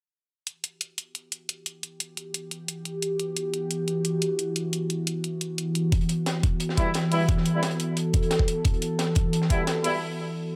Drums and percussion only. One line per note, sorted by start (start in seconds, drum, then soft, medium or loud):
0.47 closed hi-hat medium
0.64 closed hi-hat medium
0.81 closed hi-hat medium
0.98 closed hi-hat medium
1.15 closed hi-hat medium
1.32 closed hi-hat medium
1.49 closed hi-hat medium
1.66 closed hi-hat medium
1.83 closed hi-hat medium
2.00 closed hi-hat medium
2.17 closed hi-hat medium
2.34 closed hi-hat medium
2.51 closed hi-hat medium
2.68 closed hi-hat medium
2.85 closed hi-hat medium
3.02 closed hi-hat medium
3.20 closed hi-hat medium
3.37 closed hi-hat medium
3.54 closed hi-hat medium
3.71 closed hi-hat medium
3.88 closed hi-hat medium
4.05 closed hi-hat medium
4.22 closed hi-hat medium
4.39 closed hi-hat medium
4.56 closed hi-hat medium
4.73 closed hi-hat medium
4.90 closed hi-hat medium
5.07 closed hi-hat medium
5.24 closed hi-hat medium
5.41 closed hi-hat medium
5.58 closed hi-hat medium
5.75 closed hi-hat medium
5.92 kick loud
5.92 closed hi-hat medium
6.01 closed hi-hat soft
6.09 closed hi-hat medium
6.26 snare loud
6.26 closed hi-hat medium
6.43 kick loud
6.43 closed hi-hat medium
6.60 closed hi-hat medium
6.69 snare medium
6.77 kick medium
6.77 closed hi-hat medium
6.94 snare loud
6.94 closed hi-hat medium
7.12 closed hi-hat medium
7.12 open hi-hat medium
7.29 kick loud
7.29 closed hi-hat medium
7.37 snare soft
7.45 closed hi-hat medium
7.63 snare loud
7.63 closed hi-hat medium
7.71 closed hi-hat soft
7.80 closed hi-hat medium
7.97 closed hi-hat medium
8.13 kick medium
8.13 closed hi-hat medium
8.23 closed hi-hat soft
8.31 snare loud
8.31 closed hi-hat medium
8.39 kick medium
8.48 closed hi-hat medium
8.65 kick loud
8.65 closed hi-hat medium
8.74 closed hi-hat soft
8.82 closed hi-hat medium
8.99 snare loud
8.99 closed hi-hat medium
9.15 kick medium
9.15 closed hi-hat medium
9.33 closed hi-hat medium
9.42 snare medium
9.50 kick medium
9.50 closed hi-hat medium
9.67 snare loud
9.67 closed hi-hat medium
9.84 closed hi-hat medium
9.84 open hi-hat medium